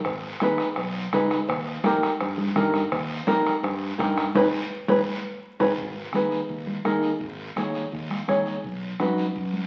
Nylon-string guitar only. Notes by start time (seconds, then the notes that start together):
0.42 D#4 G#4 B4
1.13 D#4 G#4 B4
1.85 D#4 G4 A#4
2.56 D#4 G4 A#4
3.27 D#4 G4 A#4
3.98 D#4 G4 A#4
4.36 D#4 G#4 B4
4.89 D#4 G#4 B4
5.61 D#4 G#4 B4
6.14 D#4 G#4 B4
6.85 D#4 G#4 A#4
7.57 D#4 G#4 C#5
8.28 D#4 G#4 C#5
8.99 D#4 F#4 B4